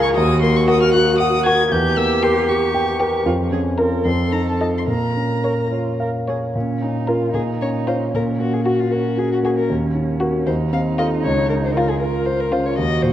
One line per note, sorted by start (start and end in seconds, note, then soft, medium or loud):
0.00 0.13 C#2 medium
0.00 0.19 A#3 medium
0.00 0.19 F4 medium
0.00 0.15 G#4 medium
0.00 0.20 A#4 medium
0.00 0.20 F5 medium
0.00 0.08 C#6 loud
0.15 1.68 D#2 medium
0.15 1.68 F#4 loud
0.15 0.41 D#6 loud
0.42 0.84 A#3 medium
0.42 0.57 C6 medium
0.56 0.68 C#6 medium
0.68 0.87 F#4 medium
0.68 1.10 A#4 medium
0.68 0.81 D#6 loud
0.82 0.93 F6 medium
0.94 1.36 F#4 medium
0.94 1.18 F#6 medium
1.18 1.61 F#5 medium
1.18 1.44 D#6 loud
1.46 1.65 F#4 medium
1.46 1.72 A#4 medium
1.46 1.73 G#6 loud
1.71 3.23 E2 medium
1.71 3.23 G4 medium
1.71 1.98 G6 medium
1.97 2.38 A#3 soft
1.97 2.23 E6 medium
2.22 2.42 G4 medium
2.22 2.64 A#4 medium
2.22 2.50 C6 medium
2.48 2.90 G4 medium
2.48 3.26 C#6 medium
2.75 3.16 G5 medium
3.00 3.20 G4 medium
3.00 3.27 A#4 medium
3.26 4.04 F2 medium
3.26 3.34 F4 medium
3.51 3.95 C#4 soft
3.51 3.61 G#4 medium
3.79 4.03 F4 soft
3.79 3.99 A#4 medium
3.79 4.03 A#4 soft
3.79 4.08 A#4 medium
4.05 4.86 F2 medium
4.05 4.88 A4 medium
4.05 4.34 C6 medium
4.32 4.77 D#4 soft
4.32 4.47 A#5 medium
4.49 4.60 A5 medium
4.60 4.85 F4 soft
4.60 4.86 A4 soft
4.60 4.81 D#5 soft
4.60 4.66 A5 medium
4.78 4.83 C6 medium
4.87 6.50 A#2 soft
4.87 5.64 A#4 medium
4.87 5.70 A#5 medium
5.16 5.60 C#4 soft
5.44 5.88 A#4 soft
5.44 5.65 C#5 soft
5.71 5.97 F4 soft
5.71 6.17 C#5 soft
6.00 6.08 A#4 soft
6.00 6.44 F5 soft
6.28 6.36 G#4 soft
6.28 6.48 C#5 soft
6.28 6.55 C#5 soft
6.55 7.32 A#2 soft
6.55 6.83 C#4 soft
6.81 7.24 C#4 soft
6.81 7.10 D#4 soft
7.08 7.33 F4 soft
7.08 7.32 F4 soft
7.08 7.27 A#4 soft
7.08 7.32 A#4 soft
7.34 8.11 A#2 soft
7.34 8.11 D#4 medium
7.34 7.42 G#4 medium
7.61 8.03 C#4 soft
7.61 7.69 C#5 medium
7.87 8.07 F4 soft
7.87 8.11 F4 soft
7.87 7.95 C5 medium
7.87 8.11 C#5 soft
8.14 9.66 A#2 soft
8.14 8.91 C#4 medium
8.14 8.23 A#4 medium
8.40 8.81 A#3 soft
8.40 8.55 F#4 medium
8.53 8.64 G#4 medium
8.65 8.81 F#4 medium
8.65 8.85 F#4 soft
8.65 9.08 F#4 soft
8.80 8.93 F4 medium
8.91 10.48 C#4 medium
8.91 9.20 F#4 medium
8.91 9.33 A#4 soft
9.17 9.59 F#4 soft
9.17 9.31 G#4 medium
9.32 9.37 F#4 medium
9.43 9.69 A#3 soft
9.43 9.64 F#4 soft
9.43 9.50 G#4 medium
9.58 9.70 A#4 medium
9.70 10.45 D#2 soft
9.94 10.36 D#4 soft
10.20 10.44 F#4 soft
10.20 10.40 F#4 soft
10.20 10.44 A#4 soft
10.46 11.21 D#2 soft
10.46 12.01 D#4 medium
10.46 10.54 C5 medium
10.72 11.14 C4 soft
10.72 10.81 F5 medium
10.98 11.21 F4 soft
10.98 11.18 F4 medium
10.98 11.22 A4 soft
10.98 11.06 D#5 medium
11.24 12.74 C#2 medium
11.24 11.49 C#5 medium
11.49 11.91 C#3 soft
11.49 11.55 A#4 medium
11.64 11.74 C5 medium
11.75 12.17 F4 soft
11.75 11.96 F4 medium
11.75 11.91 A#4 medium
11.89 11.99 G#4 medium
12.00 12.80 F4 medium
12.00 12.27 A#4 medium
12.00 12.42 A#4 soft
12.26 12.67 F4 soft
12.26 12.41 C5 medium
12.40 12.53 A#4 medium
12.51 12.77 C#3 soft
12.51 12.71 F4 medium
12.51 12.67 C5 medium
12.66 12.77 C#5 medium
12.78 13.13 D#2 medium
12.78 13.13 F#4 medium
12.78 13.04 D#5 medium
13.02 13.13 A#2 soft
13.02 13.13 C5 medium